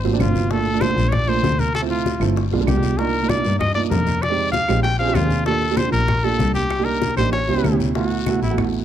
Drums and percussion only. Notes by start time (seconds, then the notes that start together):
0.04 high bongo, high conga
0.20 high bongo, low bongo, high conga, short guiro, claves
0.35 high bongo, high conga, short guiro
0.51 high bongo, high conga, long guiro
0.66 high bongo, high conga
0.81 high bongo, high conga, short guiro, claves
0.97 high conga, short guiro
1.12 high bongo, high conga, low conga, long guiro, claves
1.28 high bongo, high conga
1.43 high bongo, low bongo, high conga, short guiro
1.59 high bongo, high conga, short guiro
1.74 high bongo, high conga, long guiro, claves
1.90 high bongo, high conga
2.06 high bongo, high conga, short guiro
2.21 high conga, short guiro, claves
2.36 high bongo, high conga, long guiro
2.52 high bongo, high conga
2.67 high bongo, low bongo, high conga, short guiro, claves
2.83 high bongo, high conga, short guiro
2.99 high bongo, high conga, long guiro
3.14 high bongo, high conga
3.29 high bongo, high conga, short guiro, claves
3.45 high conga, short guiro
3.60 high bongo, high conga, low conga, long guiro, claves
3.76 high bongo, high conga
3.91 high bongo, low bongo, high conga, short guiro
4.07 high bongo, high conga, short guiro
4.22 high bongo, high conga, long guiro, claves
4.38 high bongo, high conga
4.53 high bongo, high conga, short guiro
4.68 high conga, short guiro, claves
4.84 high bongo, high conga, long guiro
5.00 high bongo, high conga
5.15 high bongo, low bongo, high conga, short guiro, claves
5.30 high bongo, high conga, short guiro
5.46 high bongo, high conga, long guiro
5.61 high bongo, high conga
5.77 high bongo, high conga, short guiro, claves
5.93 high conga, short guiro
6.08 high bongo, high conga, low conga, long guiro, claves
6.23 high bongo, high conga
6.39 high bongo, low bongo, high conga, short guiro
6.55 high bongo, high conga, short guiro
6.70 high bongo, high conga, long guiro, claves
6.86 high bongo, high conga
7.02 high bongo, high conga, short guiro
7.17 high conga, short guiro, claves
7.33 high bongo, high conga, long guiro
7.49 high bongo, high conga
7.64 high bongo, low bongo, high conga, short guiro, claves
7.80 high bongo, high conga, short guiro
7.95 high bongo, high conga, long guiro
8.11 high bongo, high conga
8.26 high bongo, high conga, short guiro, claves
8.42 high conga, short guiro
8.58 high bongo, high conga, low conga, long guiro, claves
8.73 high bongo, high conga